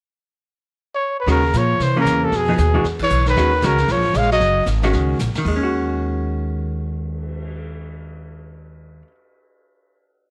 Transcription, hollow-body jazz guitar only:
1.27 1.42 D#3 medium
1.27 1.42 G#3 medium
1.27 1.42 C#4 medium
1.27 1.42 F#4 medium
1.96 2.31 E3 medium
1.96 2.31 A#3 medium
1.96 2.31 C#4 medium
2.49 2.58 F3 medium
2.49 2.58 B3 medium
2.49 2.58 D#4 medium
2.49 2.58 G#4 medium
2.74 2.83 E3 medium
2.74 2.84 G#3 medium
2.74 2.84 D4 medium
2.74 2.84 F#4 medium
3.37 3.51 D#3 soft
3.37 3.51 G#3 medium
3.37 3.51 C#4 medium
3.37 3.51 F#4 medium
3.63 3.77 D#3 soft
3.63 3.77 G#3 medium
3.63 3.78 C#4 medium
3.63 3.77 F#4 medium
4.83 5.18 D#3 medium
4.83 5.18 G#3 medium
4.83 5.18 C#4 medium
4.83 5.18 F#4 medium
5.38 9.02 D#3 medium
5.48 9.07 G#3 medium
5.56 9.11 C#4 medium
5.63 9.15 F#4 medium

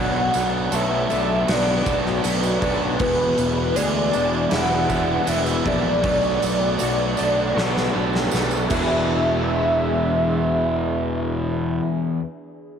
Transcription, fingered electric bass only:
0.00 0.29 B1 loud
0.35 0.68 B1 loud
0.72 1.05 B1 medium
1.12 1.44 B1 medium
1.49 1.81 B1 loud
1.86 2.19 B1 medium
2.25 2.57 B1 loud
2.63 2.95 B1 medium
3.00 3.33 E1 loud
3.39 3.71 E1 medium
3.77 4.09 D2 loud
4.15 4.47 E1 medium
4.53 5.17 E1 loud
5.28 5.60 E1 medium
5.66 6.04 A#1 medium
6.04 6.37 B1 loud
6.44 6.76 B1 loud
6.82 7.14 B1 medium
7.21 7.52 B1 medium
7.57 7.89 B1 loud
7.96 8.28 B1 medium
8.34 8.66 B1 medium
8.70 11.79 E1 medium

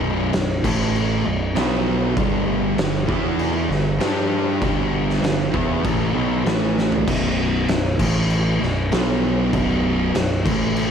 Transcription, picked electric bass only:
0.00 0.29 B0 loud
0.33 0.62 B0 medium
0.64 1.21 A1 loud
1.25 1.54 B0 medium
1.55 2.13 B1 loud
2.17 2.74 G1 medium
2.77 3.06 G1 medium
3.09 3.66 E2 loud
3.68 3.98 G1 medium
3.99 4.57 G2 loud
4.62 5.19 G1 medium
5.22 5.51 G1 medium
5.54 5.83 E2 loud
5.84 6.13 A1 loud
6.15 6.44 B1 medium
6.45 7.03 A1 medium
7.08 7.65 B0 medium
7.69 7.98 B0 medium
8.00 8.57 A1 loud
8.61 8.90 B0 medium
8.92 9.50 B1 loud
9.53 10.11 B0 medium
10.15 10.43 B0 medium
10.45 10.91 A1 loud

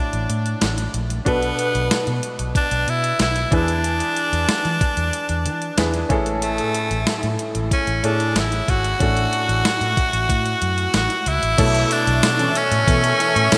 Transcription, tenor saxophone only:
0.00 0.95 D4 medium
1.28 2.20 B3 loud
2.57 2.91 D4 loud
2.90 3.21 E4 medium
3.22 3.55 E4 medium
3.54 6.11 D4 medium
6.43 7.36 A3 loud
7.73 8.07 C#4 medium
8.05 8.40 D4 medium
8.38 8.72 E4 medium
8.70 10.95 F#4 loud
10.97 11.30 F#4 medium
11.28 11.94 E4 medium
11.92 12.59 D4 medium
12.57 13.58 C#4 loud

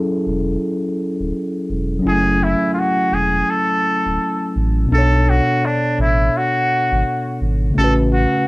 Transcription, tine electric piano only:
0.00 1.98 F#3 medium
0.00 2.00 C#4 medium
0.00 2.02 E4 medium
0.00 2.03 G#4 medium
0.00 2.05 A4 medium
1.99 4.84 F#3 medium
1.99 4.86 C#4 medium
2.06 4.87 E4 medium
2.06 4.89 G#5 medium
2.12 4.90 A3 medium
4.85 7.70 B2 medium
4.85 7.72 B3 medium
4.92 7.73 D4 medium
4.92 7.75 A4 medium
4.98 7.76 C#5 medium
7.71 8.48 C#3 medium
7.71 8.48 A3 medium
7.78 8.48 C#4 medium
7.78 8.48 F#4 medium
7.84 8.48 B4 medium

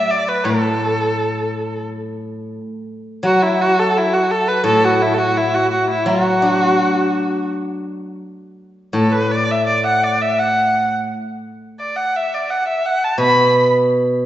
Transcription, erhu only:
0.00 0.12 E5 medium
0.11 0.30 D5 medium
0.28 0.46 B4 medium
0.44 1.85 A4 medium
3.25 3.44 F#4 medium
3.42 3.63 E4 medium
3.62 3.81 F#4 medium
3.80 3.99 A4 medium
3.98 4.15 E4 medium
4.14 4.32 F#4 medium
4.31 4.49 A4 medium
4.48 4.66 B4 medium
4.66 4.86 A4 medium
4.85 5.03 F#4 medium
5.02 5.15 E4 medium
5.14 5.20 A4 medium
5.18 5.38 F#4 medium
5.37 5.56 E4 medium
5.54 5.70 F#4 medium
5.71 5.88 F#4 medium
5.90 6.09 E4 medium
6.08 7.49 F#4 medium
8.95 9.14 A4 medium
9.13 9.33 B4 medium
9.31 9.52 D5 medium
9.51 9.66 E5 medium
9.67 9.83 D5 medium
9.86 10.05 F#5 medium
10.04 10.23 D5 medium
10.22 10.41 E5 medium
10.39 10.92 F#5 medium
11.80 11.98 D5 medium
11.96 12.18 F#5 medium
12.16 12.35 E5 medium
12.34 12.52 D5 medium
12.50 12.67 F#5 medium
12.68 12.88 E5 medium
12.86 13.05 F#5 medium
13.04 13.20 A5 medium
13.20 13.69 B5 medium

